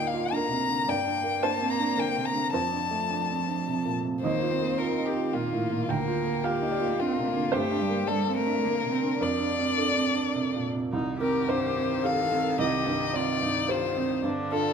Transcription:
Already playing: D2 A#3 D#4 F4 D5
0.07 F5
0.14 F4
0.32 D3 A#4 A#5
0.49 C3
0.68 D3
0.87 G2 A#3 D5 G5
1.05 D4
1.24 A#3
1.43 D4 C5 A5
1.61 C4
1.70 A#5
1.79 D4
1.97 D3 A#4 G5
2.16 C3
2.25 A#5
2.33 D3
2.53 F2 F3 C5 A5
2.72 D4
2.91 A3
3.10 D4
3.30 C4
3.47 D4
3.67 C3
3.85 A#2
4.04 C3
4.23 D#2 A#3 C5 D#5
4.43 F4
4.51 C4
4.61 A#3
4.78 F4 A#4
4.98 D#4
5.05 G4
5.17 F4
5.33 A#2 A#3 F4 F5
5.53 A2
5.71 A#2
5.89 D2 A#3 A#4 G5
6.08 F4
6.27 A#3
6.44 F4 G4 F5
6.62 D#4
6.72 D5
6.80 F4
6.99 D3 C4 F4
7.18 C3
7.26 A#3
7.36 D3
7.52 G2 A3 G4 C5
7.71 D4
7.80 G3
7.89 A#3
8.07 G3 D4 A4 D5
8.27 C4
8.36 A3 A#4
8.46 D4
8.62 D3 A#3 A#4
8.84 C3
8.91 C4
9.02 D3
9.20 F2 D4 A#4 D5
9.39 D4
9.59 C4
9.77 D4 A4
9.96 C4
10.15 D4
10.35 C3
10.55 A#2
10.73 C3
10.92 C2 D#3 D#4
11.20 C4 G4 A#4
11.48 G2 C5
11.77 C4
12.03 G4 A4 F5
12.31 C4
12.59 C2 G4 D#5
12.86 G2
13.13 C4 F4 D5
13.41 G2 D#4
13.68 F4 G4 C5
13.96 C4 D#4
14.23 G2 D3 D4
14.52 D4 F4 A4

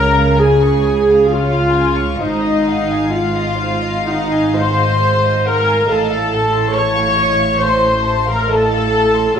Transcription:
Already playing: C#2 C#3 A#4 C#5 A#5
0.17 F5
0.39 G#4 G#5
0.63 C#6
0.86 G#5
1.09 F5
1.28 F4 C#5 F5
1.51 F5
1.74 G#5
1.95 C#6
2.20 G#1 G#2 D#4 C5 D#5 F5
2.44 D#5
2.68 F#5
2.89 G#5
3.11 F4 F5 F#5
3.35 D#5
3.58 C5
3.81 D#5
4.07 D#4 D#5 F#5
4.31 G#5
4.55 C5 F#5 C6
4.79 D#5
5.01 C5
5.22 D#5
5.44 A#4 F#5 A#5
5.66 G#5
5.87 A1 A2 A4 D#5 F5
5.91 A5
6.10 F5
6.31 A5
6.53 C6
6.74 C#5 A5 C#6
6.97 F5
7.18 D#5
7.39 F5
7.63 C5 A5 C6
7.85 C6
8.06 A5
8.27 A#4 F5 A#5
8.49 A4 D#5 A5
8.72 F5
8.94 A5
9.16 C6
9.36 C#5 A#5

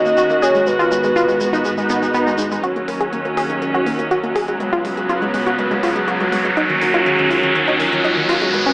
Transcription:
Already playing: D#2 D#3 C#4 F#4 D#5
0.06 A#3, shaker
0.17 F#4, shaker
0.30 A#3, shaker
0.42 G#4 C#5, shaker
0.55 G#3, shaker
0.67 G#2 G#3 B3 B4, shaker
0.79 F4, shaker
0.91 G#3, shaker
1.04 G#3, shaker
1.16 F4, shaker
1.28 G#3, shaker
1.41 G#3, shaker
1.53 D#4, shaker
1.65 G#3, swell, shaker
1.78 G#3, shaker
1.90 B3, shaker
2.02 G#3, shaker
2.14 B3, shaker
2.27 G#3, shaker
2.38 G#3, shaker
2.51 G#3, shaker
2.63 D#2 D#3 F#3 C#4 F#4 C#5, closed hi-hat, riser
2.76 A#3, closed hi-hat
2.88 A#3, open hi-hat
3.01 G#4, closed hi-hat
3.13 A#3 A#4, closed hi-hat
3.25 A#3, closed hi-hat
3.37 G#4, open hi-hat
3.50 A#3, closed hi-hat
3.62 A#3 G#4, closed hi-hat
3.74 F#4, closed hi-hat
3.86 A#3 F#4, open hi-hat
3.99 A#3, closed hi-hat
4.11 F#4, closed hi-hat
4.24 A#3, closed hi-hat
4.36 G#4 A#4, open hi-hat
4.48 G#3, closed hi-hat
4.60 C#2 C#3 G#3 B3 C#5, closed hi-hat
4.73 F4, closed hi-hat
4.85 G#3, open hi-hat
4.97 G#3, closed hi-hat
5.09 F4 B4, closed hi-hat
5.22 G#3, closed hi-hat
5.34 G#3, open hi-hat
5.47 F#4, closed hi-hat
5.59 G#3 A#4, closed hi-hat
5.71 G#3, closed hi-hat
5.83 F4 G#4, open hi-hat
5.96 G#3, closed hi-hat
6.08 F#4, closed hi-hat
6.20 G#3, closed hi-hat
6.32 G#3 B4, open hi-hat
6.45 G#3, closed hi-hat
6.57 D#2 D#3 C#4 D#4 A#4, closed hi-hat
6.69 D#3, closed hi-hat
6.82 D#3, open hi-hat
6.94 F4, closed hi-hat
7.06 D#3 G#4, closed hi-hat
7.19 D#3, closed hi-hat
7.31 F4, open hi-hat
7.43 D#3, closed hi-hat
7.55 D#3 F#4, closed hi-hat
7.68 D#4, closed hi-hat
7.80 D#3 F4, open hi-hat
7.92 D#3, closed hi-hat
8.04 D#4, closed hi-hat
8.17 D#3, closed hi-hat
8.29 F4 F#4, open hi-hat
8.42 G#3, closed hi-hat
8.54 G#2 G#3 B3 B4, closed hi-hat
8.66 C#4, closed hi-hat

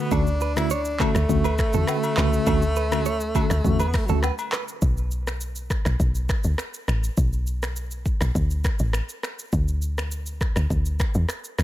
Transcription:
Already playing: B3
0.11 D2 D3 A3 C#4 D4 F#4 A4, kick, high agogo, shaker
0.27 shaker
0.41 B4, shaker
0.56 D3 A3 C#4 E4 F#4, finger snap, cross-stick, high agogo, shaker
0.70 D4 C#5, shaker
0.85 shaker
1.00 D3 A3 C#4 F#4 A4, finger snap, kick, cross-stick, clap, high agogo, shaker
1.15 D2, finger snap, cross-stick, shaker
1.29 D2 D3 A3 C#4 F#4, kick, shaker
1.44 B4, high agogo, shaker
1.58 finger snap, kick, cross-stick, shaker
1.73 E2 D3 A3 C#4 F#4 A4, shaker
1.87 B4, finger snap, cross-stick, low woodblock, shaker
2.03 high agogo, shaker
2.17 C#2 D3 A3 C#4 F#4 B4, finger snap, cross-stick, clap, shaker
2.33 shaker
2.47 D2 D3 A3 C#4 F#4 A4, kick, high agogo, shaker
2.62 shaker
2.76 B4, shaker
2.91 D3 A3 C#4 F#4, finger snap, cross-stick, high agogo, shaker
3.06 C#5, shaker
3.20 shaker
3.35 D3 A3 C#4 F#4 A4, kick, high agogo, shaker
3.50 D2, finger snap, cross-stick, shaker
3.64 E2 D3 A3 C#4 F#4, kick, shaker
3.79 B4, high agogo, shaker
3.88 B3
3.94 A3, finger snap, kick, cross-stick, open hi-hat, shaker
4.06 D2 D3 F#3 A3 C#4 F#4 A4, shaker
4.15 A3
4.23 B4, finger snap, cross-stick, low woodblock, shaker
4.38 high agogo, shaker
4.53 B4, finger snap, cross-stick, clap, shaker
4.68 shaker
4.82 B1, kick, shaker
4.97 shaker
5.11 shaker
5.27 finger snap, cross-stick, shaker
5.41 shaker
5.56 shaker
5.70 finger snap, kick, cross-stick, shaker
5.85 B1, finger snap, cross-stick, shaker
6.00 B1, kick, shaker
6.15 shaker
6.29 finger snap, kick, cross-stick, shaker
6.44 D2, shaker
6.58 finger snap, cross-stick, shaker
6.74 shaker
6.88 A1, finger snap, cross-stick, shaker
7.04 shaker
7.17 B1, kick, shaker
7.33 shaker
7.47 shaker
7.63 finger snap, cross-stick, shaker
7.76 shaker
7.91 shaker
8.06 kick, shaker
8.21 B1, finger snap, cross-stick, shaker
8.35 D2, kick, shaker
8.50 shaker
8.64 finger snap, kick, cross-stick, shaker
8.79 A1, shaker
8.93 finger snap, cross-stick, shaker
9.09 shaker
9.23 finger snap, cross-stick, shaker
9.39 shaker
9.53 D2, kick, shaker
9.68 shaker
9.82 shaker
9.98 finger snap, cross-stick, shaker
10.12 shaker
10.26 shaker
10.41 finger snap, kick, cross-stick, shaker
10.56 D2, finger snap, cross-stick, shaker
10.70 D2, kick, shaker
10.86 shaker
11.00 finger snap, kick, cross-stick, shaker
11.14 E2, shaker
11.29 finger snap, cross-stick, shaker
11.44 shaker
11.59 C#2, finger snap, cross-stick, shaker

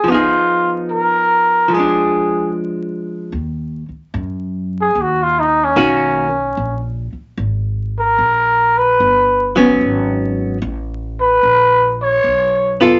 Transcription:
Already playing: G#4
0.04 F3
0.08 B3 D#4 F4
0.14 G#4
0.90 A#4
1.68 F3
1.73 G#3 G#4
1.79 D4
3.32 D#2
3.89 muted upright bass stroke
4.14 F#2
4.81 G#4
4.95 D#2
5.01 F#4
5.23 F4
5.39 D#4
5.64 C#4
5.76 B1 D#3 A#3 C#4 F#4
6.57 A#1
7.13 muted upright bass stroke
7.38 G#1
7.99 A#4
8.18 A#1
8.78 B4
9.00 G1
9.56 F#3 B3 C#4
9.81 G#1
10.62 A1
11.21 B4
11.43 A#1
12.02 C#5
12.24 B1
12.81 B3 F4 A4

